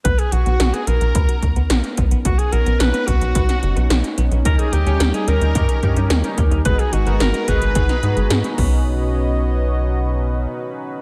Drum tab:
CC |----------------|----------------|----------------|--------------x-|
HH |xxxxxxxxxxxxxxxx|xxxxxxxxxxxxxxxx|xxxxxxxxxxxxxxxx|xxxxxxxxxxxxxx--|
SD |----o-------o---|----o----o--o---|----o-------o---|----o----o--o---|
BD |o-------o-o---o-|o-----o-o-------|o-------o-o---o-|o-----o-o-----o-|

CC |----------------|
HH |----------------|
SD |----------------|
BD |----------------|